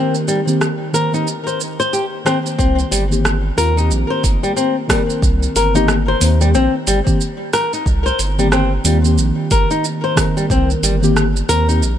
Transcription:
Already playing: synth keys D#3 A#3 C4 A#4, synth drone D#3 A#3 C4 G4, nylon-string guitar C4
0.15 shaker
0.28 nylon-string guitar G3, shaker
0.47 synth keys D#3 A#3 C4 G4, shaker
0.61 cross-stick, shaker
0.93 synth keys D#3 A#3 C4 C5, nylon-string guitar A#4, shaker
1.12 synth keys D#3 A#3 C4 G4, nylon-string guitar D#4, shaker
1.28 shaker
1.47 nylon-string guitar C5, shaker
1.61 shaker
1.80 nylon-string guitar C5, shaker
1.93 nylon-string guitar G4, shaker
2.25 synth keys D#3 A#3 C4 C5, nylon-string guitar C4, cross-stick, shaker
2.46 shaker
2.58 analog synth bass C2, nylon-string guitar C4, kick, shaker
2.79 shaker
2.91 analog synth bass G1, nylon-string guitar G3, open hi-hat, shaker
3.10 synth keys D#3 A#3 C4 G4, shaker
3.25 cross-stick, shaker
3.57 analog synth bass D#2, synth keys D#3 A#3 C4 F4, nylon-string guitar A#4, open hi-hat, shaker
3.75 synth keys D#3 A#3 C4 G4, nylon-string guitar D#4, shaker
3.91 analog synth bass A#1, shaker
4.10 nylon-string guitar C5
4.24 analog synth bass G1, kick, open hi-hat, shaker
4.43 nylon-string guitar G3, shaker
4.57 nylon-string guitar C4, shaker
4.87 synth keys D#3 A#3 C4 A#4, nylon-string guitar G3, kick, cross-stick, open hi-hat, shaker
5.10 shaker
5.22 analog synth bass C2, kick, shaker
5.43 shaker
5.56 analog synth bass G1, nylon-string guitar A#4, open hi-hat, shaker
5.74 synth keys D#3 A#3 C4 G4, nylon-string guitar D#4, shaker
5.88 cross-stick, shaker
6.08 nylon-string guitar C5
6.20 analog synth bass D#2, synth keys D#3 A#3 C4 C5, open hi-hat, shaker
6.40 synth keys D#3 A#3 C4 G4, nylon-string guitar G3, shaker
6.55 analog synth bass A#1, nylon-string guitar C4, shaker
6.87 analog synth bass G1, nylon-string guitar G3, open hi-hat, shaker
7.06 synth keys D#3 A#3 C4 G4, kick, shaker
7.21 shaker
7.53 nylon-string guitar A#4, cross-stick, open hi-hat, shaker
7.73 nylon-string guitar D#4, shaker
7.86 analog synth bass C2, kick, shaker
8.06 nylon-string guitar C5, shaker
8.19 analog synth bass G1, open hi-hat, shaker
8.38 synth keys D#3 A#3 C4 G4, nylon-string guitar G3, shaker
8.52 nylon-string guitar C4, cross-stick, shaker
8.84 analog synth bass D#2, synth keys D#3 A#3 C4 F4, nylon-string guitar G3, open hi-hat, shaker
9.03 synth keys D#3 A#3 C4 G4, shaker
9.18 analog synth bass A#1, shaker
9.51 analog synth bass G1, nylon-string guitar A#4, kick, open hi-hat, shaker
9.71 nylon-string guitar D#4, shaker
9.85 shaker
10.04 nylon-string guitar C5
10.15 synth keys D#3 A#3 C4 A#4, kick, cross-stick, open hi-hat, shaker
10.37 nylon-string guitar G3, shaker
10.50 analog synth bass C2, nylon-string guitar C4, kick, shaker
10.70 shaker
10.83 analog synth bass G1, nylon-string guitar G3, open hi-hat, shaker
11.02 synth keys D#3 A#3 C4 G4, shaker
11.17 cross-stick, shaker
11.37 shaker
11.49 analog synth bass D#2, synth keys D#3 A#3 C4 C5, nylon-string guitar A#4, open hi-hat, shaker
11.68 synth keys D#3 A#3 C4 G4, nylon-string guitar D#4, shaker
11.82 analog synth bass A#1, shaker

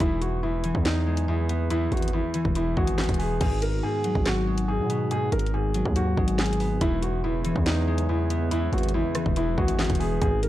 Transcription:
Already playing: harp B3
0.00 808-style bass E1, harp E2, grand piano E4, kick, closed hi-hat
0.21 grand piano F#4, closed hi-hat
0.43 harp E2, grand piano E4
0.64 harp E3, closed hi-hat
0.75 808-style bass E2, kick
0.85 harp E2, grand piano D#4, snare, clap, closed hi-hat
1.07 harp G#3
1.17 closed hi-hat
1.28 harp E2, grand piano E4
1.49 harp B3, closed hi-hat
1.70 harp E2, grand piano E4, closed hi-hat
1.92 808-style bass G#1, grand piano F#4, closed hi-hat
1.97 closed hi-hat
2.02 closed hi-hat
2.08 closed hi-hat
2.13 harp E2, grand piano E4
2.34 harp E3, closed hi-hat
2.45 808-style bass E1, kick
2.55 harp E2, grand piano E4, closed hi-hat
2.77 808-style bass G#1, harp G#3, grand piano F#4, kick
2.87 closed hi-hat
2.98 harp E2, snare, clap, closed hi-hat
3.04 closed hi-hat
3.09 808-style bass E1, kick, closed hi-hat
3.14 closed hi-hat
3.19 harp B3, grand piano G#4, open hi-hat
3.41 808-style bass G#1, harp G#2, analog synth pad D#3 G#3 B3 F#4, grand piano G#4, kick, closed hi-hat, crash
3.62 grand piano A#4, closed hi-hat
3.83 harp G#2, grand piano G#4
4.04 harp F#3, closed hi-hat
4.15 808-style bass G#1, kick
4.26 harp G#2, grand piano F#4, snare, clap, closed hi-hat
4.47 harp G#3
4.58 closed hi-hat
4.68 harp G#2, grand piano G#4
4.79 808-style bass B2
4.90 harp B3, closed hi-hat
5.11 harp G#2, grand piano G#4, closed hi-hat
5.32 808-style bass G#1, grand piano A#4, closed hi-hat
5.39 closed hi-hat
5.46 closed hi-hat
5.54 harp G#2, grand piano G#4
5.74 harp F#3, closed hi-hat
5.85 808-style bass D#2, kick
5.96 harp G#2, grand piano F#4, closed hi-hat
6.17 808-style bass G#1, harp G#3, kick
6.28 closed hi-hat
6.39 harp G#2, grand piano G#4, snare, clap, closed hi-hat
6.46 closed hi-hat
6.53 closed hi-hat
6.60 harp B3, open hi-hat
6.81 808-style bass E1, harp E2, analog synth pad C#3 E3, grand piano E4, kick, closed hi-hat
7.02 grand piano F#4, closed hi-hat
7.24 harp E2, grand piano E4
7.45 harp E3, closed hi-hat
7.56 808-style bass E2, kick
7.66 harp E2, grand piano D#4, snare, clap, closed hi-hat
7.88 harp G#3
7.98 closed hi-hat
8.09 harp E2, grand piano E4
8.30 harp B3, closed hi-hat
8.51 harp E2, grand piano E4, closed hi-hat
8.72 808-style bass G#1, grand piano F#4, closed hi-hat
8.78 closed hi-hat
8.83 closed hi-hat
8.89 closed hi-hat
8.94 harp E2, grand piano E4
9.15 harp E3, cross-stick, closed hi-hat
9.26 808-style bass E1, kick
9.36 harp E2, grand piano E4, closed hi-hat
9.58 808-style bass G#1, harp G#3, grand piano F#4, kick
9.68 closed hi-hat
9.79 harp E2, snare, clap, closed hi-hat
9.84 closed hi-hat
9.90 808-style bass E1, kick, closed hi-hat
9.95 closed hi-hat
10.00 harp B3, grand piano G#4, open hi-hat
10.21 808-style bass G#1, harp G#2, analog synth pad D#3 F#4, grand piano G#4, kick, closed hi-hat
10.43 grand piano A#4, closed hi-hat

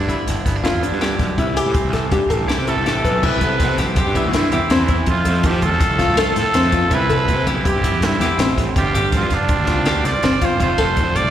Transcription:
Already playing: clean electric guitar G2 E4
0.00 picked electric bass G2, clean electric guitar D4
0.08 clean electric guitar D3, five-string banjo E4, kick, closed hi-hat
0.28 picked electric bass G1, clean electric guitar G2, snare, closed hi-hat
0.45 picked electric bass G1, clean electric guitar B3, kick, snare, closed hi-hat
0.56 clean electric guitar D4
0.63 clean electric guitar E4, five-string banjo F4, snare, closed hi-hat
0.74 picked electric bass E2
0.83 clean electric guitar B3, five-string banjo D4, closed hi-hat
0.92 picked electric bass G2
1.01 clean electric guitar G2, five-string banjo G4, snare, closed hi-hat
1.18 picked electric bass B1, clean electric guitar D3, kick, snare, closed hi-hat
1.38 picked electric bass C2, clean electric guitar C3, five-string banjo E4, kick, closed hi-hat
1.54 clean electric guitar E3, five-string banjo G4, closed hi-hat
1.66 picked electric bass A2
1.73 clean electric guitar C4, kick, closed hi-hat
1.84 picked electric bass C2
1.90 clean electric guitar E3, five-string banjo A4, kick, snare, closed hi-hat
2.10 clean electric guitar G2, picked electric bass G2, five-string banjo G4, kick, closed hi-hat
2.29 picked electric bass A1, clean electric guitar C4, five-string banjo A4, kick, closed hi-hat
2.48 clean electric guitar E4, five-string banjo G4, snare, closed hi-hat
2.58 picked electric bass C3, clean electric guitar G4
2.67 clean electric guitar A3, five-string banjo E4, trumpet A4, closed hi-hat
2.77 picked electric bass C2
2.84 picked electric bass A1, clean electric guitar C3, five-string banjo G4, snare, closed hi-hat
3.02 picked electric bass B1, clean electric guitar E3, five-string banjo B4, kick, closed hi-hat
3.22 picked electric bass C2, clean electric guitar C3, five-string banjo E4, trumpet B4, kick, crash
3.41 picked electric bass C2, clean electric guitar B3, five-string banjo A4, kick, closed hi-hat
3.60 picked electric bass C3, clean electric guitar C4, kick, snare, closed hi-hat
3.78 picked electric bass B1, five-string banjo G4, kick, snare, closed hi-hat
3.88 picked electric bass B1
3.96 clean electric guitar C4, five-string banjo G4, trumpet G4, kick, closed hi-hat
4.06 picked electric bass G2
4.15 clean electric guitar B3, five-string banjo E4, kick, closed hi-hat
4.25 picked electric bass E2
4.33 picked electric bass G2, clean electric guitar C4, trumpet E4, snare, closed hi-hat
4.52 picked electric bass E2, clean electric guitar C4, five-string banjo G4, closed hi-hat
4.70 picked electric bass E2, clean electric guitar D3, five-string banjo C4, snare, closed hi-hat
4.88 clean electric guitar E3, five-string banjo E4, kick, closed hi-hat
5.06 picked electric bass F2, clean electric guitar F2, trumpet F4, kick, closed hi-hat
5.25 picked electric bass F2, clean electric guitar A3, five-string banjo A4, closed hi-hat
5.43 picked electric bass F3, clean electric guitar C4, trumpet G4, kick, closed hi-hat
5.62 picked electric bass E2, clean electric guitar F4, trumpet A4, kick, closed hi-hat
5.72 picked electric bass E2
5.80 clean electric guitar C4, kick, snare, closed hi-hat
5.90 picked electric bass C2
5.98 clean electric guitar A3, five-string banjo F4, kick, snare, closed hi-hat
6.08 picked electric bass A2
6.17 picked electric bass C2, clean electric guitar F4, five-string banjo A4, snare, closed hi-hat
6.36 picked electric bass A2, clean electric guitar C4, trumpet A4, snare, closed hi-hat
6.54 picked electric bass F2, clean electric guitar A2, five-string banjo C4, snare, closed hi-hat
6.72 clean electric guitar B2, five-string banjo F4, kick, closed hi-hat
6.91 picked electric bass C2, clean electric guitar C3 E3 B3 C4, five-string banjo E4, trumpet B4, kick, closed hi-hat
6.95 clean electric guitar E4
7.10 picked electric bass C2, clean electric guitar B3, five-string banjo A4, kick, closed hi-hat
7.28 picked electric bass C3, clean electric guitar C4, kick, closed hi-hat
7.47 picked electric bass B1, clean electric guitar E4, five-string banjo G4, kick, closed hi-hat
7.57 picked electric bass B1
7.65 clean electric guitar C4, five-string banjo G4, trumpet G4, kick, closed hi-hat
7.75 picked electric bass G2
7.84 clean electric guitar B3, five-string banjo E4, kick, closed hi-hat
7.93 picked electric bass E2
8.02 picked electric bass G2, clean electric guitar C4, trumpet E4, snare, closed hi-hat
8.20 picked electric bass E2, clean electric guitar C4, five-string banjo G4, snare, closed hi-hat
8.38 picked electric bass A1, clean electric guitar B2, five-string banjo C4, snare, closed hi-hat
8.57 clean electric guitar A2, kick, snare, closed hi-hat
8.76 picked electric bass G1, clean electric guitar G2 D3 G3 C4 F4, trumpet G4, kick, closed hi-hat
8.94 picked electric bass G1, clean electric guitar G3, five-string banjo G4, closed hi-hat
9.12 picked electric bass G2, clean electric guitar C4, trumpet F4, kick, snare, closed hi-hat
9.30 picked electric bass F1, clean electric guitar F4, kick, snare, closed hi-hat
9.34 trumpet D4
9.41 picked electric bass F1
9.48 clean electric guitar C4, kick, closed hi-hat
9.59 picked electric bass D2
9.67 clean electric guitar G3, five-string banjo F4, kick, snare, closed hi-hat
9.77 picked electric bass C2
9.85 picked electric bass D2, clean electric guitar F4, five-string banjo G4, snare, closed hi-hat
10.05 picked electric bass C2, clean electric guitar C4, trumpet D5, snare, closed hi-hat
10.23 picked electric bass G1, clean electric guitar G2, five-string banjo C4, snare, closed hi-hat
10.41 clean electric guitar G3, five-string banjo F4, trumpet C5, kick, snare, closed hi-hat
10.59 picked electric bass F1, clean electric guitar F2 D3 A3 C4, five-string banjo F4, trumpet C5, kick, closed hi-hat
10.64 clean electric guitar F4
10.78 picked electric bass F1, clean electric guitar A3, five-string banjo A4, kick, snare, closed hi-hat
10.97 picked electric bass F2, clean electric guitar C4, kick, closed hi-hat
11.15 picked electric bass C2, clean electric guitar F4, five-string banjo G4, trumpet D5, kick, closed hi-hat
11.25 picked electric bass C2

